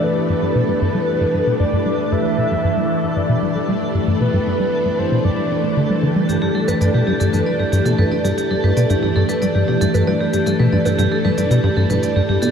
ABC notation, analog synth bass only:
X:1
M:4/4
L:1/16
Q:1/4=115
K:G
V:1 name="Analog synth bass" clef=bass
G, z G,, G,, B,, G,, G,, G, z G,, G,, B,, G,, G,, G, z | G,, G,, B,, G,, G,, G, z G,, G,, B,, G,, G,, G, z G,, G,, | B,, G,, G,, G, z G,, G,, B,, G,, G,, B,, B,, D, G, D, G, | G,, G,, z G,, G,, B,, G,, G,, G,, z G,, G,, B,, G,, G,, G,, |
z G,, G,, B,, G,, G,, G,, z G,, G,, B,, G,, G,, G,, z G,, | G,, B,, G,, G,, G,, z G,, G,, B,, G,, G,, G,, z G,, G,, B,, |]